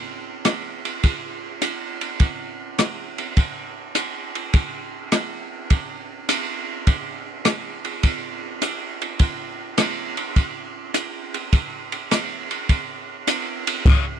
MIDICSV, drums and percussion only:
0, 0, Header, 1, 2, 480
1, 0, Start_track
1, 0, Tempo, 582524
1, 859, Time_signature, 4, 2, 24, 8
1, 11698, End_track
2, 0, Start_track
2, 0, Title_t, "Drums"
2, 369, Note_on_c, 9, 44, 48
2, 369, Note_on_c, 9, 51, 52
2, 373, Note_on_c, 9, 37, 52
2, 451, Note_off_c, 9, 44, 0
2, 451, Note_off_c, 9, 51, 0
2, 455, Note_off_c, 9, 37, 0
2, 700, Note_on_c, 9, 51, 36
2, 782, Note_off_c, 9, 51, 0
2, 851, Note_on_c, 9, 51, 46
2, 856, Note_on_c, 9, 36, 26
2, 934, Note_off_c, 9, 51, 0
2, 938, Note_off_c, 9, 36, 0
2, 1331, Note_on_c, 9, 44, 47
2, 1331, Note_on_c, 9, 51, 51
2, 1414, Note_off_c, 9, 44, 0
2, 1414, Note_off_c, 9, 51, 0
2, 1656, Note_on_c, 9, 51, 36
2, 1739, Note_off_c, 9, 51, 0
2, 1810, Note_on_c, 9, 51, 45
2, 1815, Note_on_c, 9, 36, 29
2, 1892, Note_off_c, 9, 51, 0
2, 1897, Note_off_c, 9, 36, 0
2, 2294, Note_on_c, 9, 44, 45
2, 2294, Note_on_c, 9, 51, 49
2, 2298, Note_on_c, 9, 37, 51
2, 2376, Note_off_c, 9, 44, 0
2, 2376, Note_off_c, 9, 51, 0
2, 2381, Note_off_c, 9, 37, 0
2, 2621, Note_on_c, 9, 51, 36
2, 2704, Note_off_c, 9, 51, 0
2, 2774, Note_on_c, 9, 51, 46
2, 2778, Note_on_c, 9, 36, 29
2, 2856, Note_off_c, 9, 51, 0
2, 2860, Note_off_c, 9, 36, 0
2, 3254, Note_on_c, 9, 44, 48
2, 3254, Note_on_c, 9, 51, 51
2, 3336, Note_off_c, 9, 44, 0
2, 3336, Note_off_c, 9, 51, 0
2, 3585, Note_on_c, 9, 51, 36
2, 3668, Note_off_c, 9, 51, 0
2, 3736, Note_on_c, 9, 51, 50
2, 3740, Note_on_c, 9, 36, 30
2, 3818, Note_off_c, 9, 51, 0
2, 3823, Note_off_c, 9, 36, 0
2, 4217, Note_on_c, 9, 44, 39
2, 4217, Note_on_c, 9, 51, 51
2, 4221, Note_on_c, 9, 37, 52
2, 4299, Note_off_c, 9, 44, 0
2, 4299, Note_off_c, 9, 51, 0
2, 4303, Note_off_c, 9, 37, 0
2, 4698, Note_on_c, 9, 51, 47
2, 4702, Note_on_c, 9, 36, 28
2, 4780, Note_off_c, 9, 51, 0
2, 4785, Note_off_c, 9, 36, 0
2, 5180, Note_on_c, 9, 44, 46
2, 5180, Note_on_c, 9, 51, 57
2, 5262, Note_off_c, 9, 44, 0
2, 5262, Note_off_c, 9, 51, 0
2, 5659, Note_on_c, 9, 51, 49
2, 5662, Note_on_c, 9, 36, 29
2, 5742, Note_off_c, 9, 51, 0
2, 5745, Note_off_c, 9, 36, 0
2, 6137, Note_on_c, 9, 44, 55
2, 6137, Note_on_c, 9, 51, 52
2, 6141, Note_on_c, 9, 37, 51
2, 6220, Note_off_c, 9, 44, 0
2, 6220, Note_off_c, 9, 51, 0
2, 6224, Note_off_c, 9, 37, 0
2, 6464, Note_on_c, 9, 51, 37
2, 6546, Note_off_c, 9, 51, 0
2, 6617, Note_on_c, 9, 51, 47
2, 6622, Note_on_c, 9, 36, 25
2, 6700, Note_off_c, 9, 51, 0
2, 6704, Note_off_c, 9, 36, 0
2, 7099, Note_on_c, 9, 44, 48
2, 7099, Note_on_c, 9, 51, 53
2, 7182, Note_off_c, 9, 44, 0
2, 7182, Note_off_c, 9, 51, 0
2, 7428, Note_on_c, 9, 51, 37
2, 7511, Note_off_c, 9, 51, 0
2, 7575, Note_on_c, 9, 51, 49
2, 7581, Note_on_c, 9, 36, 30
2, 7657, Note_off_c, 9, 51, 0
2, 7663, Note_off_c, 9, 36, 0
2, 8055, Note_on_c, 9, 44, 53
2, 8055, Note_on_c, 9, 51, 57
2, 8059, Note_on_c, 9, 37, 51
2, 8138, Note_off_c, 9, 44, 0
2, 8138, Note_off_c, 9, 51, 0
2, 8142, Note_off_c, 9, 37, 0
2, 8381, Note_on_c, 9, 51, 37
2, 8463, Note_off_c, 9, 51, 0
2, 8537, Note_on_c, 9, 51, 42
2, 8540, Note_on_c, 9, 36, 26
2, 8620, Note_off_c, 9, 51, 0
2, 8622, Note_off_c, 9, 36, 0
2, 9016, Note_on_c, 9, 44, 54
2, 9016, Note_on_c, 9, 51, 50
2, 9098, Note_off_c, 9, 44, 0
2, 9098, Note_off_c, 9, 51, 0
2, 9345, Note_on_c, 9, 51, 41
2, 9428, Note_off_c, 9, 51, 0
2, 9497, Note_on_c, 9, 51, 47
2, 9499, Note_on_c, 9, 36, 30
2, 9579, Note_off_c, 9, 51, 0
2, 9582, Note_off_c, 9, 36, 0
2, 9822, Note_on_c, 9, 51, 36
2, 9905, Note_off_c, 9, 51, 0
2, 9980, Note_on_c, 9, 44, 47
2, 9980, Note_on_c, 9, 51, 55
2, 9984, Note_on_c, 9, 37, 49
2, 10063, Note_off_c, 9, 44, 0
2, 10063, Note_off_c, 9, 51, 0
2, 10067, Note_off_c, 9, 37, 0
2, 10305, Note_on_c, 9, 51, 36
2, 10388, Note_off_c, 9, 51, 0
2, 10457, Note_on_c, 9, 51, 42
2, 10459, Note_on_c, 9, 36, 25
2, 10540, Note_off_c, 9, 51, 0
2, 10542, Note_off_c, 9, 36, 0
2, 10937, Note_on_c, 9, 44, 54
2, 10937, Note_on_c, 9, 51, 61
2, 11019, Note_off_c, 9, 44, 0
2, 11019, Note_off_c, 9, 51, 0
2, 11264, Note_on_c, 9, 51, 55
2, 11347, Note_off_c, 9, 51, 0
2, 11417, Note_on_c, 9, 36, 72
2, 11418, Note_on_c, 9, 49, 61
2, 11499, Note_off_c, 9, 36, 0
2, 11500, Note_off_c, 9, 49, 0
2, 11698, End_track
0, 0, End_of_file